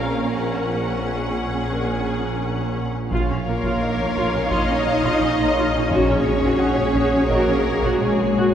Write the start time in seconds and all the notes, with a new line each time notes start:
Already playing: A#1 A#2 A#3 C4 C#4 A#4 C5 F5
0.34 F#5
1.03 G#4
1.73 A#4
3.11 A#1 A#2 F4 C#5 F5, taiko
3.28 A#1 C#4
3.46 A#1 A#3 A#4
3.63 A#1 F4, taiko
3.82 D#4 D#5
3.99 A#1 A#3
4.15 A#1 F4, taiko
4.33 A#1 C#4
4.50 A#1 D#4 F4 D#5, taiko
4.69 A#1 C#4
4.87 F5
5.03 A#1 F4, taiko
5.20 A#1 C#4
5.38 A#1 A#3
5.56 A#1 F4
5.74 A#1 C#4
5.90 A#1 A#2 C#4 F#4 G#4 C#5, taiko
6.08 A#1 C#4
6.25 A#1 G#3
6.42 A#1 F#4, taiko
6.59 F#5
6.77 A#1 G#3
6.95 A#1 F#4, taiko
7.13 A#1 C#4
7.29 A#1 A#3 F#4 A#4 D#5, taiko
7.47 A#1 C#4
7.82 A#1 F#4, taiko
7.99 A#1 G#3 C#4 G#4
8.17 A#1 G#3
8.34 A#1 F#4